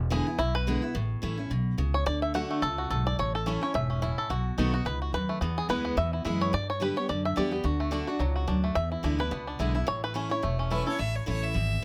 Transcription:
Already playing: E1 E2
0.10 D3 G#3 B3 E4 G#4
0.27 B3 E4
0.38 B1 B2 E4
0.55 B4
0.67 D3 G#3 B3 E4
0.82 B3 E4
0.94 A1 A2
1.22 A1 E3 A3 C#4 E4
1.38 C#4 E4
1.50 B1 B2
1.78 C#2 C#3
1.94 C#5
2.06 D2 D3 D5
2.22 E5
2.34 D3 A3 D4 F#4 F#5
2.51 A3
2.62 C#2 C#3 A4
2.78 F#4
2.90 B1 G#2 A4
3.07 D5
3.19 A1 A2 C#5
3.35 A4
3.46 E3 A3 C#4 E4
3.61 C#4 E4 C#5
3.74 E1 G#2 E5
3.90 C#4
4.02 A2 E4
4.18 A4
4.29 B1 B2 F#4
4.57 B1 D#3 A3 B3 D#4 F#4
4.73 B3 F#4
4.85 C#2 G#2 B4
5.02 F#4
5.13 D#2 F#2 B4
5.29 A3
5.41 E2 B3
5.58 G#4
5.69 D2 E3 G#3 B3 E4 B4
5.85 B3
5.97 E2 E5
6.13 E4
6.25 F#2 E3 G#3 B3 E4
6.41 C#5
6.53 G2 D5
6.70 C#5
6.80 D3 G3 B3 G4 B4
6.96 B3 G4 C#5
7.09 F#2 D3 D5
7.25 E5
7.36 E2 D3 G3 B3 G4 D5
7.51 B3 G4
7.64 D2 D3 F#4
7.80 A3
7.91 D3 A3 D4 F#4
8.07 D4 F#4
8.19 C#2 G#2 F#3
8.36 F#4
8.47 D2 F#2 D4
8.64 A3
8.75 E2 E5
8.92 E4
9.03 D2 D3 G#3 B3 D4 E4
9.18 B3 E4 B4
9.31 C#2 B2 B3
9.47 D4
9.59 B1 D3 G#3 B3 E4
9.75 B3 E4
9.87 A2 C#5
10.04 B4
10.14 E3 A3 C#4 E4
10.30 C#4 E4 C#5
10.42 E1 E2 A3
10.59 C#4
10.70 E3 A3 C#4 E4 B4
10.86 C#4 E4 A4 C#5
10.99 A1 A2 E5
11.15 C#5
11.26 A1 E3 A3 C#4 E4 C#5
11.44 E5
11.54 G#1 E2

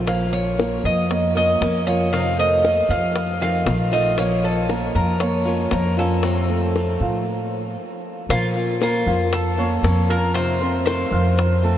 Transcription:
Already playing: A#1
0.06 F3 A#3 C#4 F4 F5, high bongo
0.33 C#5, high bongo
0.58 F3 A#3 C#4 F4 A#4 C#5, high bongo
0.84 F2 D#5, high bongo
1.10 A#3 A#4 C#5, muted steel-string acoustic guitar stroke, high bongo
1.35 A#3 C#4 F4 A#4 C#5 D#5, high bongo
1.61 F2 F3 A#3 C#4 F4, high bongo, low bongo
1.86 F3 A#3 C#4 F4 C#5 F5
2.12 C3 D#3 A3 C4 F4 F5, high bongo
2.38 A3 A4 C5 D#5, high bongo
2.64 D#3 A3 C4 F4, high bongo
2.89 F2 F3 F4 F5
3.15 muted steel-string acoustic guitar stroke, high bongo
3.41 D#3 F3 A3 C4 F4 F5, high bongo
3.66 A#1 D#3 A3 C4 F4, high bongo, low bongo
3.91 D#3 F3 A3 C4 F4 D#5 F5, high bongo
4.17 F3 A#3 C#4 F4 C#5 F5, high bongo
4.44 A4, high bongo
4.69 F3 A#3 C#4 F4 A#4 C#5, high bongo
4.95 F2 A#4, high bongo
5.20 A#3 A#4 C#5, muted steel-string acoustic guitar stroke, high bongo
5.45 A#3 C#4 F4 A#4 C#5, high bongo
5.71 F2 F3 A#3 C#4 F4 A#4, high bongo, low bongo
5.97 F3 A#3 C#4 F4 A4 F5
6.23 C3 D#3 A3 C4 F4, high bongo
6.49 A3 A4 C5, high bongo
6.75 D#3 A3 C4 F4, high bongo
7.00 A2 F3 F4 F5
8.29 A#2 F3 A#3 C#4 F4 F5, high bongo
8.55 A#3 C#4 F4
8.80 F3 A#3 C#4 F4 A#4 A#5, high bongo
9.07 F2 F3 F4 F5, high bongo
9.32 A4, muted steel-string acoustic guitar stroke, high bongo
9.57 A#3 C#4 F4 C#5 C#6, high bongo
9.83 F2 F3 A#3 C#4 F4, high bongo, low bongo
10.09 A#3 C#4 F4 A#4 F5 F6, high bongo
10.34 C3 D#3 A3 C4 F4 C5, high bongo
10.60 A3 C4 F4 C5 C6, high bongo
10.85 C3 D#3 A3 C4 F4 C5, high bongo
11.11 F2 F4 F5 F6
11.37 muted steel-string acoustic guitar stroke, high bongo
11.63 A3 C4 F4 A4 A5, high bongo

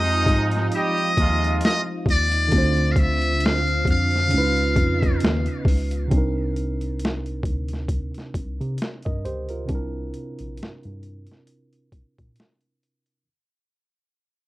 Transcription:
Already playing: F2 C3 F3 G#3 C4 D#4 F4 G4 D#5
0.09 closed hi-hat
0.26 G#2, kick, closed hi-hat
0.52 closed hi-hat
0.56 snare
0.72 G3 D#4 G4 D#5, closed hi-hat
0.98 closed hi-hat
1.17 D#2 C3 G#3 F4, kick, closed hi-hat
1.44 closed hi-hat
1.61 closed hi-hat
1.65 D#5, snare
2.06 D#2 D5, kick, closed hi-hat
2.32 closed hi-hat
2.48 D3 D4, kick, closed hi-hat
2.53 D2 D3 C4 F4
2.58 C5
2.77 closed hi-hat
2.92 F5
2.96 E5, kick, closed hi-hat
3.22 closed hi-hat
3.40 closed hi-hat
3.45 F5, snare
3.67 closed hi-hat
3.85 F2, kick, closed hi-hat
3.90 F5
4.11 closed hi-hat
4.15 snare
4.28 C#3 B3 C#4 D#4 F4, closed hi-hat
4.33 C#2 D#4 E4
4.38 B4
4.42 F4
4.57 closed hi-hat
4.76 F2, kick, closed hi-hat
5.02 kick, closed hi-hat
5.20 D#2, closed hi-hat
5.24 snare
5.45 closed hi-hat
5.65 C#2, kick, open hi-hat
5.91 closed hi-hat
6.07 C3 C4, kick, closed hi-hat
6.12 C2 D4 D#4
6.17 A#4
6.56 closed hi-hat
6.81 closed hi-hat
6.99 closed hi-hat
7.05 snare
7.26 closed hi-hat
7.43 D2, kick, closed hi-hat
7.68 closed hi-hat
7.73 snare
7.88 kick, closed hi-hat
8.14 snare, closed hi-hat
8.34 C2, kick, closed hi-hat
8.61 C3, closed hi-hat
8.78 closed hi-hat
8.82 snare
9.03 A#4 D#5, kick, closed hi-hat
9.07 G2
9.25 C#2 G4 C5, closed hi-hat
9.49 F4 A#4, closed hi-hat
9.65 C3 C4, kick, closed hi-hat
9.70 C2 D4 E4
9.75 A#4
10.14 closed hi-hat
10.39 A#1, closed hi-hat
10.57 G2, closed hi-hat
10.63 snare
10.83 G2, closed hi-hat
11.03 closed hi-hat
11.27 closed hi-hat
11.31 snare
11.47 closed hi-hat
11.73 closed hi-hat
11.92 A#2, kick, closed hi-hat
12.18 A#2, kick, closed hi-hat
12.36 closed hi-hat
12.40 snare
12.61 closed hi-hat
12.83 closed hi-hat
13.06 closed hi-hat

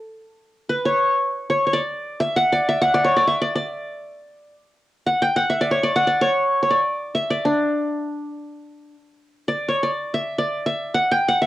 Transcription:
Already playing: A4
0.69 B4
0.85 C#5
1.50 C#5
1.66 C#5
1.73 D5
2.20 E5
2.36 F#5
2.52 D5
2.69 E5
2.81 F#5
2.94 D5
3.04 C#5
3.16 D5
3.27 E5
3.42 D5
3.56 D5
5.07 F#5
5.22 G5
5.36 F#5
5.50 E5
5.61 D5
5.71 C#5
5.83 D5
5.96 F#5
6.07 D5
6.21 C#5
6.63 C#5
6.71 D5
7.15 E5
7.30 D5
7.45 D4
9.48 D5
9.68 C#5
9.83 D5
10.14 E5
10.38 D5
10.66 E5
10.94 F#5
11.12 G5
11.29 F#5
11.42 E5

